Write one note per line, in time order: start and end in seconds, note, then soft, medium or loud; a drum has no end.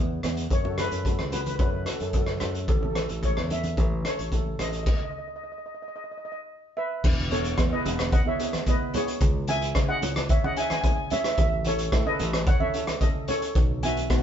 0.00 0.21 E2 medium
0.00 0.13 B3 medium
0.00 0.14 E4 medium
0.00 0.14 G#4 medium
0.00 0.20 D#5 medium
0.23 0.49 E2 medium
0.23 0.48 B3 medium
0.23 0.49 E4 medium
0.23 0.49 G#4 medium
0.23 cross-stick medium
0.23 closed hi-hat medium
0.23 low conga medium
0.37 closed hi-hat medium
0.51 0.89 F#2 medium
0.51 0.80 C#5 loud
0.51 kick medium
0.51 closed hi-hat medium
0.64 0.73 C#4 medium
0.64 0.73 F#4 medium
0.64 0.73 A4 medium
0.64 low conga medium
0.78 0.95 C#4 medium
0.78 0.95 F#4 medium
0.78 0.95 A4 medium
0.78 1.31 B4 medium
0.78 cross-stick medium
0.78 closed hi-hat medium
0.78 high conga medium
0.91 1.17 F#2 medium
0.91 closed hi-hat medium
1.05 1.22 C#4 medium
1.05 1.22 F#4 medium
1.05 1.23 A4 medium
1.05 kick medium
1.05 closed hi-hat medium
1.19 1.57 C#2 medium
1.19 cross-stick medium
1.19 high conga medium
1.32 1.49 C#4 medium
1.32 1.49 F#4 medium
1.32 1.50 G#4 medium
1.32 1.40 B4 medium
1.32 closed hi-hat medium
1.32 low conga medium
1.41 1.46 B4 medium
1.46 1.54 B4 medium
1.46 closed hi-hat medium
1.46 high conga medium
1.56 1.85 F#2 medium
1.56 1.76 C#4 medium
1.56 1.62 B4 medium
1.56 kick loud
1.56 closed hi-hat medium
1.60 1.76 F#4 medium
1.60 1.77 A4 medium
1.60 1.69 B4 medium
1.70 1.78 B4 medium
1.86 2.03 C#4 medium
1.86 2.04 F#4 medium
1.86 1.94 A4 medium
1.86 2.04 A4 medium
1.86 cross-stick medium
1.86 closed hi-hat medium
1.95 2.01 A4 soft
2.00 2.39 F#2 medium
2.00 2.09 A4 medium
2.00 closed hi-hat medium
2.10 2.16 A4 medium
2.10 kick medium
2.10 closed hi-hat medium
2.14 2.31 C#4 medium
2.14 2.31 F#4 medium
2.14 2.32 A4 medium
2.14 2.25 A4 medium
2.26 2.32 A4 soft
2.26 cross-stick medium
2.40 2.67 F#2 medium
2.40 2.66 C#4 medium
2.40 2.66 F#4 medium
2.40 2.66 A4 medium
2.40 cross-stick medium
2.40 closed hi-hat medium
2.40 low conga medium
2.54 closed hi-hat medium
2.68 3.07 A1 medium
2.68 2.75 A4 medium
2.68 kick loud
2.68 closed hi-hat medium
2.77 2.84 A4 medium
2.81 2.90 C#4 medium
2.81 2.91 E4 medium
2.81 2.91 A4 medium
2.81 2.92 A4 medium
2.81 low conga medium
2.93 3.12 C#4 medium
2.93 3.12 E4 medium
2.93 2.98 A4 medium
2.93 3.13 A4 medium
2.93 cross-stick medium
2.93 closed hi-hat medium
2.93 high conga medium
2.99 3.07 A4 medium
3.08 3.35 A1 medium
3.08 3.15 A4 medium
3.08 closed hi-hat medium
3.22 3.39 C#4 medium
3.22 3.39 E4 medium
3.22 3.40 A4 medium
3.22 3.50 C#5 medium
3.22 kick medium
3.22 closed hi-hat medium
3.37 3.75 E2 medium
3.37 cross-stick medium
3.37 high conga medium
3.50 3.67 C#4 medium
3.50 3.67 E4 medium
3.50 3.67 A4 medium
3.50 4.07 E5 medium
3.50 closed hi-hat medium
3.50 low conga medium
3.63 closed hi-hat soft
3.63 high conga medium
3.77 4.03 A1 medium
3.77 3.94 C#4 medium
3.77 3.94 E4 medium
3.77 3.94 A4 medium
3.77 kick medium
3.77 closed hi-hat medium
4.04 4.21 C#4 medium
4.04 4.21 E4 medium
4.04 4.22 A4 medium
4.04 4.62 C#5 medium
4.04 cross-stick medium
4.04 closed hi-hat medium
4.19 4.57 A1 medium
4.19 closed hi-hat soft
4.32 4.49 C#4 medium
4.32 4.49 E4 medium
4.32 4.49 A4 medium
4.32 kick medium
4.32 closed hi-hat medium
4.59 4.85 A1 medium
4.59 4.84 C#4 medium
4.59 4.84 E4 medium
4.59 4.84 A4 medium
4.59 4.67 D#5 medium
4.59 cross-stick medium
4.59 closed hi-hat medium
4.59 low conga medium
4.69 4.75 D#5 medium
4.69 closed hi-hat soft
4.76 4.82 D#5 medium
4.83 4.87 D#5 medium
4.83 kick medium
4.83 crash medium
4.89 4.96 D#5 medium
4.97 5.03 D#5 medium
5.04 5.09 D#5 medium
5.11 5.17 D#5 medium
5.18 5.26 D#5 medium
5.28 5.34 D#5 soft
5.36 5.42 D#5 medium
5.44 5.50 D#5 medium
5.52 5.57 D#5 medium
5.58 5.65 D#5 soft
5.66 5.72 D#5 medium
5.75 5.80 D#5 soft
5.82 5.87 D#5 medium
5.88 5.94 D#5 medium
5.96 6.02 D#5 medium
6.04 6.10 D#5 soft
6.12 6.16 D#5 medium
6.18 6.24 D#5 soft
6.25 6.31 D#5 medium
6.32 6.39 D#5 medium
6.77 7.28 B4 medium
6.77 7.33 E5 medium
7.04 7.54 E1 medium
7.04 kick loud
7.04 crash loud
7.31 7.48 B3 medium
7.31 7.48 E4 medium
7.31 7.48 G#4 medium
7.31 7.70 A4 medium
7.31 7.74 C#5 loud
7.31 closed hi-hat medium
7.31 high conga medium
7.44 closed hi-hat medium
7.58 7.71 E2 medium
7.58 7.67 B3 medium
7.58 7.67 E4 medium
7.58 7.67 G#4 medium
7.58 kick medium
7.58 cross-stick medium
7.58 closed hi-hat medium
7.72 7.80 B3 medium
7.72 7.81 E4 medium
7.72 7.81 G#4 medium
7.72 8.11 B4 medium
7.72 8.10 D#5 medium
7.84 8.11 E1 loud
7.84 8.09 B3 medium
7.84 8.10 E4 medium
7.84 8.10 G#4 medium
7.84 closed hi-hat medium
7.84 low conga medium
7.99 cross-stick medium
7.99 closed hi-hat medium
7.99 high conga medium
8.12 8.19 D#5 medium
8.12 8.19 F#5 medium
8.12 kick loud
8.12 closed hi-hat medium
8.25 8.34 B3 medium
8.25 8.34 E4 medium
8.25 8.35 G#4 medium
8.25 8.65 C#5 medium
8.25 8.65 E5 loud
8.39 8.56 B3 medium
8.39 8.57 E4 medium
8.39 8.57 G#4 medium
8.39 closed hi-hat medium
8.53 cross-stick medium
8.53 closed hi-hat medium
8.53 high conga medium
8.66 8.84 B3 medium
8.66 8.84 E4 medium
8.66 8.84 G#4 medium
8.66 8.94 B4 medium
8.66 8.96 D#5 medium
8.66 kick medium
8.66 closed hi-hat medium
8.93 9.21 B3 medium
8.93 9.22 E4 medium
8.93 9.22 G#4 medium
8.93 9.46 G#4 medium
8.93 9.51 C#5 medium
8.93 closed hi-hat medium
8.93 low conga medium
9.08 closed hi-hat medium
9.20 9.72 C#2 loud
9.20 kick loud
9.20 closed hi-hat medium
9.47 9.65 C#4 medium
9.47 9.65 E4 medium
9.47 9.66 G#4 medium
9.47 9.87 E5 medium
9.47 9.91 G#5 loud
9.47 closed hi-hat medium
9.47 high conga medium
9.62 closed hi-hat medium
9.75 9.88 C#3 medium
9.75 9.83 C#4 medium
9.75 9.84 E4 medium
9.75 9.84 G#4 medium
9.75 kick medium
9.75 cross-stick medium
9.75 closed hi-hat medium
9.88 9.97 C#4 medium
9.88 9.97 E4 medium
9.88 9.97 G#4 medium
9.88 10.27 D#5 medium
9.88 10.31 F#5 loud
10.01 10.28 C#2 medium
10.01 10.26 C#4 medium
10.01 10.27 E4 medium
10.01 10.27 G#4 medium
10.01 closed hi-hat medium
10.01 low conga medium
10.16 cross-stick medium
10.16 closed hi-hat medium
10.16 high conga medium
10.29 10.44 C#5 medium
10.29 10.44 E5 medium
10.29 kick loud
10.29 closed hi-hat medium
10.44 10.52 C#4 medium
10.44 10.52 E4 medium
10.44 10.52 G#4 medium
10.44 10.51 D#5 medium
10.44 10.50 F#5 medium
10.44 high conga medium
10.56 10.73 C#4 medium
10.56 10.73 E4 medium
10.56 10.74 G#4 medium
10.56 10.65 E5 medium
10.56 10.64 G#5 loud
10.56 closed hi-hat medium
10.65 10.71 G#5 medium
10.70 10.80 G#5 loud
10.70 cross-stick medium
10.70 closed hi-hat medium
10.70 high conga medium
10.81 11.00 C#4 medium
10.81 11.01 E4 medium
10.81 10.86 G#5 medium
10.81 kick medium
10.81 closed hi-hat medium
10.85 11.01 G#4 medium
10.85 10.94 G#5 medium
10.95 11.03 G#5 medium
11.10 11.39 C#4 medium
11.10 11.39 E4 medium
11.10 11.40 G#4 medium
11.10 11.19 C#5 medium
11.10 11.18 E5 loud
11.10 closed hi-hat medium
11.10 low conga medium
11.19 11.25 E5 medium
11.24 11.32 E5 medium
11.24 cross-stick medium
11.24 closed hi-hat medium
11.33 11.40 E5 medium
11.37 11.88 A1 medium
11.37 11.48 E5 medium
11.37 kick loud
11.37 closed hi-hat medium
11.49 11.57 E5 medium
11.64 11.82 C#4 medium
11.64 11.83 E4 medium
11.64 11.83 A4 medium
11.64 12.05 A4 medium
11.64 12.04 C#5 loud
11.64 closed hi-hat medium
11.64 high conga medium
11.78 closed hi-hat medium
11.92 12.05 A2 medium
11.92 12.01 C#4 medium
11.92 12.01 E4 medium
11.92 12.02 A4 medium
11.92 kick medium
11.92 cross-stick medium
11.92 closed hi-hat medium
12.06 12.14 C#4 medium
12.06 12.15 E4 medium
12.06 12.15 A4 medium
12.06 12.45 B4 medium
12.06 12.48 D#5 loud
12.19 12.46 A1 loud
12.19 12.45 C#4 medium
12.19 12.45 E4 medium
12.19 12.46 A4 medium
12.19 closed hi-hat medium
12.19 low conga medium
12.33 cross-stick medium
12.33 closed hi-hat medium
12.33 high conga medium
12.47 12.61 C#5 medium
12.47 12.61 F#5 medium
12.47 kick loud
12.47 closed hi-hat medium
12.60 12.69 C#4 medium
12.60 12.69 E4 medium
12.60 12.69 A4 medium
12.60 12.99 C#5 medium
12.60 13.02 E5 medium
12.60 high conga medium
12.74 12.91 C#4 medium
12.74 12.91 E4 medium
12.74 12.91 A4 medium
12.74 closed hi-hat medium
12.87 cross-stick medium
12.87 closed hi-hat medium
12.87 high conga medium
13.01 13.18 C#4 medium
13.01 13.18 E4 medium
13.01 13.18 A4 medium
13.01 13.15 A4 medium
13.01 13.13 D#5 medium
13.01 kick medium
13.01 closed hi-hat medium
13.28 13.56 C#4 medium
13.28 13.57 E4 medium
13.28 13.80 A4 medium
13.28 13.57 A4 medium
13.28 13.84 C#5 medium
13.28 closed hi-hat medium
13.28 low conga medium
13.42 closed hi-hat medium
13.55 14.06 B1 medium
13.55 kick loud
13.55 closed hi-hat medium
13.83 14.00 B3 medium
13.83 14.00 D#4 medium
13.83 14.00 F#4 medium
13.83 14.22 E5 medium
13.83 14.23 G#5 loud
13.83 closed hi-hat medium
13.83 high conga medium
13.97 closed hi-hat medium
14.10 14.23 B2 medium
14.10 14.18 B3 medium
14.10 14.19 D#4 medium
14.10 14.19 F#4 medium
14.10 kick medium
14.10 cross-stick medium
14.10 closed hi-hat medium